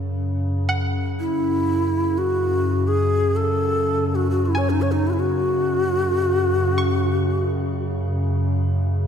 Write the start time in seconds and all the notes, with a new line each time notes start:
Already playing: G#4 A4
0.07 F#2 C#3
0.69 F#5
1.20 E4
2.18 F#4
2.87 G#4
3.36 A4
4.15 F#4
4.31 F#4
4.45 E4
4.55 C#5 G#5
4.70 D#4
4.82 C#5
4.92 D#4
5.07 E4 F#4
5.13 E4
5.20 F#4
6.78 C#6